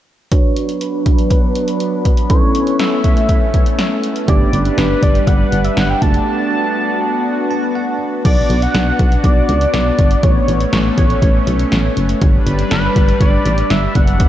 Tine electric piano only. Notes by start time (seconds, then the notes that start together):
0.32 D4 F#4 B4
2.30 C#4 E4 A4
4.28 B3 D4 G4
6.02 A3 D4 F#4
7.51 A5
7.75 F#5